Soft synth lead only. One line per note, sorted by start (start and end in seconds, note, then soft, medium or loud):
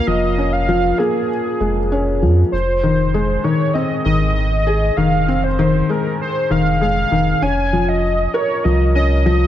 0.07 0.54 D#5 loud
0.53 1.00 F5 loud
0.98 2.21 G#4 loud
2.52 3.46 C5 medium
3.44 3.75 C#5 loud
3.74 4.04 D#5 loud
4.04 4.34 D#5 loud
4.34 4.98 D#5 loud
4.97 5.45 F5 loud
5.44 5.92 C5 loud
5.91 6.21 A#4 loud
6.21 6.53 C5 loud
6.51 6.81 F5 loud
6.82 7.44 F5 loud
7.42 7.90 G#5 loud
7.88 8.35 D#5 loud
8.34 8.65 C#5 loud
8.64 8.94 D#5 loud
8.95 9.24 D#5 loud
9.26 9.47 D#5 loud